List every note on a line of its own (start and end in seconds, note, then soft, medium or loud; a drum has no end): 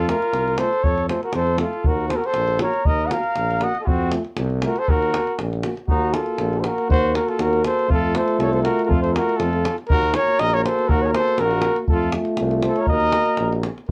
0.00 0.11 F2 loud
0.00 0.09 F4 loud
0.00 0.11 A4 medium
0.07 0.17 A3 medium
0.07 0.19 F4 medium
0.07 0.60 F4 medium
0.07 0.60 A#4 loud
0.07 davul high medium
0.22 davul high soft
0.32 0.61 C2 medium
0.32 davul high medium
0.48 davul high soft
0.58 0.69 A3 medium
0.58 0.69 F4 medium
0.58 0.84 A4 medium
0.58 0.85 C5 medium
0.58 davul high medium
0.73 davul high soft
0.83 1.12 F2 medium
0.83 1.08 A4 medium
0.83 1.08 C#5 loud
0.83 davul low medium
0.98 davul high soft
1.08 1.19 A3 medium
1.08 1.19 F4 medium
1.08 1.22 A4 medium
1.08 1.22 C5 medium
1.08 davul high medium
1.23 1.34 F#4 medium
1.23 1.34 A#4 medium
1.23 davul high soft
1.33 1.63 F2 loud
1.33 1.58 A4 medium
1.33 1.58 C5 medium
1.33 davul high medium
1.47 davul high soft
1.58 1.69 A3 medium
1.58 1.88 F4 medium
1.58 1.71 F4 medium
1.58 1.89 A4 medium
1.58 davul high medium
1.73 davul high soft
1.84 2.13 D#2 medium
1.84 2.11 F#4 medium
1.84 2.08 A#4 medium
1.84 davul low medium
2.09 2.20 A#3 medium
2.09 2.21 A4 medium
2.09 2.18 C5 medium
2.09 davul high medium
2.13 2.22 F#4 medium
2.13 2.27 A#4 medium
2.19 2.29 F#4 medium
2.24 2.62 A4 medium
2.24 2.61 C5 loud
2.24 davul high soft
2.34 2.63 A#1 loud
2.34 davul high medium
2.48 davul high soft
2.59 2.71 A#3 medium
2.59 2.71 F#4 medium
2.59 2.86 A#4 medium
2.59 2.87 C#5 medium
2.59 davul high medium
2.74 davul high soft
2.85 3.14 D#2 medium
2.85 3.07 A#4 medium
2.85 3.08 D#5 loud
2.85 davul low medium
3.06 3.12 D#5 medium
3.06 3.15 F#5 medium
3.10 3.21 A#3 medium
3.10 3.23 F#4 medium
3.10 3.64 A#4 medium
3.10 3.65 F5 medium
3.10 davul high medium
3.23 davul high soft
3.36 3.65 A#1 loud
3.36 davul high medium
3.51 davul high soft
3.61 3.72 A#3 medium
3.61 3.72 F#4 medium
3.61 3.82 D#5 medium
3.61 3.80 F#5 medium
3.61 davul high medium
3.75 davul high soft
3.81 3.90 F4 medium
3.81 3.87 A4 medium
3.85 4.15 F2 medium
3.85 4.13 C4 loud
3.85 4.12 F#4 medium
3.85 davul low medium
4.11 4.21 A3 medium
4.11 4.22 F4 medium
4.11 davul high medium
4.25 davul high soft
4.37 4.66 C2 loud
4.37 davul high medium
4.50 davul high soft
4.62 4.73 A3 medium
4.62 4.74 F4 medium
4.62 4.80 A#4 medium
4.62 davul high medium
4.67 4.81 F#4 medium
4.76 4.92 A4 medium
4.76 4.91 C5 loud
4.76 davul high soft
4.88 5.16 D#2 medium
4.88 5.40 F#4 loud
4.88 5.39 A#4 loud
4.88 davul low medium
5.02 davul high soft
5.13 5.23 A#3 medium
5.13 5.24 F#4 soft
5.13 davul high medium
5.27 davul high soft
5.39 5.67 A#1 loud
5.39 davul high medium
5.53 davul high soft
5.63 5.74 A#3 medium
5.63 5.74 F#4 medium
5.63 davul high medium
5.77 davul high soft
5.87 6.18 D#2 loud
5.87 7.90 A#3 medium
5.87 6.15 D#4 loud
5.87 6.15 F#4 medium
5.87 7.86 F#4 medium
5.87 davul low medium
6.14 6.59 F4 medium
6.14 6.61 A4 medium
6.14 davul high medium
6.26 davul high soft
6.38 6.67 A#1 loud
6.38 davul high medium
6.53 davul high soft
6.58 6.66 A4 medium
6.58 6.66 C5 medium
6.64 6.89 F#4 medium
6.64 6.89 A#4 medium
6.64 davul high medium
6.78 davul high soft
6.88 7.16 D#2 loud
6.88 7.15 F#4 loud
6.88 7.16 C5 loud
6.88 davul low medium
7.15 7.31 F#4 medium
7.15 7.30 A#4 medium
7.15 davul high medium
7.28 7.41 F4 medium
7.28 7.43 A4 medium
7.28 davul high soft
7.39 7.67 D#2 loud
7.39 7.64 F#4 medium
7.39 7.65 A#4 medium
7.39 davul high medium
7.53 davul high soft
7.64 7.87 A4 medium
7.64 7.88 C5 medium
7.64 davul high medium
7.79 davul high soft
7.88 8.16 F2 medium
7.88 9.69 A3 medium
7.88 8.17 F4 medium
7.88 9.66 F4 medium
7.88 davul low medium
7.92 8.18 A4 loud
8.15 8.38 A4 medium
8.15 8.40 C5 medium
8.15 davul high medium
8.28 davul high soft
8.39 8.66 C2 loud
8.39 8.53 A4 medium
8.39 8.54 C#5 medium
8.39 davul high medium
8.52 8.63 A4 medium
8.52 8.62 C5 medium
8.52 davul high soft
8.63 8.84 F#4 medium
8.63 8.84 A#4 medium
8.63 davul high medium
8.79 davul high soft
8.84 8.90 F#4 medium
8.84 9.00 A4 loud
8.84 8.89 A#4 medium
8.88 9.16 F2 loud
8.88 9.02 F4 loud
8.88 davul low medium
9.01 9.13 A4 medium
9.01 9.11 C5 medium
9.01 davul high soft
9.12 9.42 F#4 medium
9.12 9.38 A#4 loud
9.16 davul high medium
9.29 davul high soft
9.37 9.67 F2 loud
9.37 9.78 F4 medium
9.37 9.76 A4 loud
9.37 davul high medium
9.53 davul high soft
9.65 davul high medium
9.78 davul high soft
9.89 10.16 D#2 medium
9.89 11.85 A#3 medium
9.89 11.89 F#4 medium
9.89 10.18 F#4 loud
9.89 10.17 A#4 loud
9.89 davul low loud
10.14 10.40 A#4 medium
10.14 10.41 C#5 loud
10.14 davul high medium
10.28 davul high soft
10.39 10.67 A#1 loud
10.39 10.56 A#4 loud
10.39 10.55 D#5 loud
10.39 davul high medium
10.54 10.66 A#4 medium
10.54 10.63 C#5 loud
10.54 davul high soft
10.64 10.92 A4 medium
10.64 10.90 C5 medium
10.64 davul high medium
10.79 davul high soft
10.88 11.17 D#2 loud
10.88 11.08 F#4 loud
10.88 11.04 A#4 loud
10.88 davul low medium
11.02 11.16 A#4 medium
11.02 11.13 C#5 medium
11.14 11.44 A4 medium
11.14 11.42 C5 loud
11.14 davul high medium
11.28 davul high soft
11.38 11.67 A#1 loud
11.38 11.78 A#4 loud
11.38 davul high medium
11.43 11.79 F#4 medium
11.51 davul high soft
11.62 davul high medium
11.76 davul high soft
11.88 12.17 F2 medium
11.88 12.89 A3 medium
11.88 12.91 F4 medium
11.88 12.12 A4 loud
11.88 davul low medium
11.92 12.14 F4 medium
12.12 davul high medium
12.25 davul high soft
12.37 12.67 C2 loud
12.37 davul high medium
12.51 davul high soft
12.63 12.79 C5 medium
12.63 davul high medium
12.67 12.82 A4 medium
12.76 12.88 C#5 medium
12.76 davul high soft
12.80 12.90 A#4 medium
12.87 13.17 D#2 medium
12.87 13.68 A#3 medium
12.87 13.69 F#4 medium
12.87 13.59 D#5 loud
12.87 davul low medium
12.92 13.61 A#4 loud
13.00 davul high soft
13.12 davul high medium
13.26 davul high soft
13.37 13.67 A#1 loud
13.37 davul high medium
13.53 davul high soft
13.63 davul high medium
13.78 davul high soft